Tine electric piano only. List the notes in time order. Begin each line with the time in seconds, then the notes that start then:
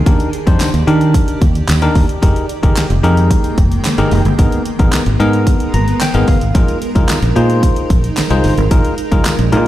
0.06 D4 D#4 G4 A#4
0.47 D4 D#4 G4 C5
0.87 D4 D#4 G4 A#4
1.82 D4 D#4 G4 A#4
2.22 D#4 G4 G#4 A#4
2.63 D#4 G4 G#4 A#4
3.03 D#4 G4 G#4 A#4
3.98 D#4 G4 G#4 A#4
4.38 B3 D#4 G#4 A#4
4.79 B3 D#4 G#4 A#4
5.20 B3 D#4 G#4 A#4
5.74 A#5
6.01 G5
6.14 B3 D#4 G#4 A#4
6.28 F5
6.55 D#4 F4 G#4 A#4
6.95 D#4 F4 G#4 A#4
7.36 D#4 F4 G#4 C5
8.30 D#4 F4 G#4 C5
8.71 D#4 F4 G#4 A#4
9.12 D#4 F4 G#4 A#4
9.52 D#4 F4 G#4 A#4